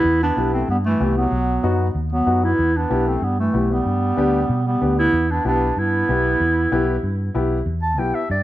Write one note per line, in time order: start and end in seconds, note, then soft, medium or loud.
0.00 0.20 B3 medium
0.00 0.20 E4 loud
0.04 0.30 E2 loud
0.23 0.51 B3 medium
0.23 0.52 D4 loud
0.37 0.62 B1 medium
0.37 0.59 B3 medium
0.37 0.59 E4 medium
0.37 0.59 G4 medium
0.53 0.69 A3 medium
0.53 0.68 C4 medium
0.68 0.94 G2 medium
0.68 0.78 G3 medium
0.68 0.77 B3 medium
0.86 1.15 E3 medium
0.86 1.15 A3 loud
1.00 1.26 C2 medium
1.00 1.23 B3 medium
1.00 1.23 E4 medium
1.00 1.23 G4 medium
1.18 1.82 F#3 medium
1.18 1.81 B3 loud
1.31 1.57 B1 loud
1.63 1.89 F#2 medium
1.63 1.86 B3 medium
1.63 1.86 D#4 medium
1.63 1.86 F#4 medium
1.95 2.20 D#2 loud
2.13 2.46 F#3 medium
2.13 2.46 B3 loud
2.26 2.52 F#2 medium
2.26 2.49 B3 medium
2.26 2.49 D#4 medium
2.26 2.49 F#4 medium
2.44 2.76 B3 medium
2.44 2.78 E4 loud
2.59 2.84 E2 loud
2.76 3.10 B3 medium
2.76 3.10 D4 medium
2.90 3.16 B1 medium
2.90 3.12 B3 medium
2.90 3.13 E4 medium
2.90 3.13 G4 medium
3.08 3.26 A3 medium
3.08 3.25 C4 medium
3.22 3.47 G2 loud
3.22 3.39 G3 medium
3.22 3.39 B3 loud
3.40 3.73 E3 medium
3.40 3.74 A3 medium
3.53 3.79 B1 medium
3.53 3.76 B3 medium
3.53 3.76 E4 medium
3.53 3.76 G4 medium
3.71 4.66 G3 medium
3.71 4.66 B3 loud
3.86 4.11 G2 loud
4.17 4.43 D2 medium
4.17 4.40 B3 medium
4.17 4.40 D4 medium
4.17 4.40 G4 medium
4.49 4.75 B2 loud
4.66 4.95 G3 medium
4.66 4.96 B3 loud
4.81 5.07 D2 loud
4.81 5.04 B3 medium
4.81 5.04 D4 medium
4.81 5.04 G4 medium
4.98 5.30 B3 medium
4.98 5.33 E4 loud
5.13 5.38 E2 loud
5.30 5.45 B3 medium
5.30 5.46 D4 medium
5.45 5.70 B1 medium
5.45 5.67 B3 medium
5.45 5.77 B3 medium
5.45 5.81 D4 loud
5.45 5.67 E4 medium
5.45 5.67 G4 medium
5.77 6.02 G2 loud
5.77 7.36 B3 medium
5.77 7.37 E4 loud
6.09 6.34 B1 loud
6.09 6.31 B3 medium
6.09 6.31 E4 medium
6.09 6.31 G4 medium
6.40 6.66 E2 loud
6.72 6.97 B1 medium
6.72 6.94 B3 medium
6.72 6.94 E4 medium
6.72 6.94 G4 medium
7.03 7.29 G2 loud
7.35 7.60 B1 medium
7.35 7.57 B3 medium
7.35 7.57 E4 medium
7.35 7.58 G4 medium
7.66 7.98 E2 loud
7.82 8.00 A5 medium
7.98 8.11 B1 medium
7.98 8.21 B3 medium
7.98 8.21 E4 medium
7.98 8.21 G4 medium
7.98 8.17 G5 medium
8.15 8.30 E5 medium
8.30 8.43 G2 loud
8.30 8.43 D5 medium